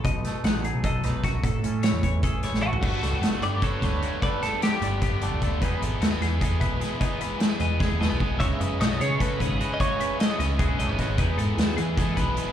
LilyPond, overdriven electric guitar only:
\new Staff \with { instrumentName = "Overdriven electric guitar" } { \time 7/8 \key e \major \tempo 4 = 151 r2. r8 | r2. r8 | <g, d g b d'>8 <g b d'>8 <g, d g b d'>8 <g b d'>8 <d g b d'>8 <g, d g b d'>8 <d g b d'>8 | <g, d g b d'>8 <g b d'>8 <g, d g b d'>8 <g b d'>8 <d g b d'>8 <g, d g b d'>8 <d g b d'>8 |
<e gis b e'>8 <gis b e'>8 <e gis b e'>8 <gis b e'>8 <e gis b e'>8 <e gis b e'>8 <e gis b e'>8 | <e gis b e'>8 <gis b e'>8 <e gis b e'>8 <gis b e'>8 <e gis b e'>8 <e gis b e'>8 <e gis b e'>8 | <cis gis cis' e'>8 <gis cis' e'>8 <cis gis cis' e'>8 <gis cis' e'>8 <cis gis cis' e'>8 <cis gis cis' e'>8 <cis gis cis' e'>8 | <cis gis cis' e'>8 <gis cis' e'>8 <cis gis cis' e'>8 <gis cis' e'>8 <cis gis cis' e'>8 <cis gis cis' e'>8 <cis gis cis' e'>8 |
<e gis b e'>8 <gis b e'>8 <e gis b e'>8 <gis b e'>8 <e gis b e'>8 <e gis b e'>8 <e gis b e'>8 | }